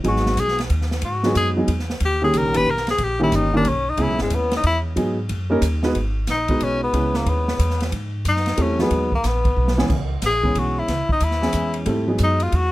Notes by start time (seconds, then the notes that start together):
0.04 G#1 F#3 G#3 B3 D#4 G#4, kick, ride
0.08 F#4
0.16 snare
0.26 snare
0.37 B1 G#4, kick, hi-hat pedal, ride
0.48 snare
0.58 snare, ride
0.70 D#2, kick, ride
0.82 snare
0.91 snare
1.02 G#2 F#4, kick, ride
1.23 F#3 G#3 B3 D#4 G#4, snare
1.35 F#2 G#4, kick, hi-hat pedal, ride
1.57 F#3 G#3 B3 D#4 G#4
1.68 E2, kick, ride
1.79 snare
1.90 snare
2.00 D#2, kick, ride
2.05 G4
2.22 D#3 G3 A#3 C#4 G4 G#4
2.33 C#2, kick, hi-hat pedal, ride
2.38 A#4
2.46 A#1
2.54 G1 D#3 G3 A#3 C#4 G4 B4, ride
2.66 B1 A#4, kick
2.77 snare
2.87 G#4, snare, ride
2.98 A#1, kick, ride
3.04 G4
3.19 D#3 G3 A#3 C#4 E4 G4
3.32 G1 D#4, kick, hi-hat pedal, ride
3.54 D#3 G3 A#3 C#4 D4 A#4
3.65 B1, kick, ride
3.69 C#4
3.90 D#4
3.97 C#2 G#3 B3 C#4 E4 G#4, kick, ride
4.03 E4
4.08 B1
4.18 G#1, snare
4.22 G#3
4.30 D#2, kick, hi-hat pedal, ride
4.35 B3
4.51 snare, ride
4.57 D#4
4.63 E2 E4, kick, ride
4.96 G#2 F#3 G#3 B3 D#4 G#4, kick, ride
5.29 F#2, kick, ride
5.50 G3 A#3 C#4 D#4 A#4
5.62 D#2, kick, hi-hat pedal, ride
5.83 G#3 B3 D#4 F#4 B4, snare
5.95 G#1, kick, ride
6.27 A#1 D#4, kick, snare, hi-hat pedal, ride
6.48 G#3 B3 D#4 F#4 B4, kick, ride
6.60 B1 C#4, kick, ride
6.83 B3
6.93 C#2 G#3 B3 C#4 E4 B4, kick, ride
7.14 A#3, snare
7.26 D#2 B3, kick, ride
7.48 snare
7.59 E2, kick, hi-hat pedal, ride
7.70 snare
7.80 snare, ride
7.92 G#2, kick, ride
8.25 F#2 D#4, kick, hi-hat pedal, ride
8.36 snare
8.46 snare, ride
8.57 E2 G3 A3 C4 E4 A4, kick, ride
8.62 C#4
8.79 F#3 G#3 B3 D#4 G#4, snare
8.91 D#2, kick, ride
9.12 A#3, kick
9.23 A#1 B3, kick, snare, hi-hat pedal, ride
9.45 kick, ride
9.57 B1
9.68 snare
9.77 E3 G#3 B3 C#4 G#4, snare
9.90 C#2, kick, crash
10.22 A#1, kick, snare, hi-hat pedal, ride
10.26 G#4
10.43 E3 G#3 B3 C#4 G#4, kick
10.55 B1 F#4, kick, ride
10.79 E4
10.88 C#2, kick, snare, ride
11.09 D#4, muted upright bass stroke, kick
11.20 D#2 E4, kick, hi-hat pedal, ride
11.31 snare
11.41 E3 G#3 B3 C#4 G#4, snare
11.53 E2, kick, hi-hat pedal, ride
11.74 ride
11.85 G#2 G3 A3 C4 E4 A4, kick, ride
12.07 F#3 G#3 B3 D#4 G#4
12.18 F#2, kick, hi-hat pedal, ride
12.23 D#4
12.40 F4, ride
12.52 E2 F#4, kick, ride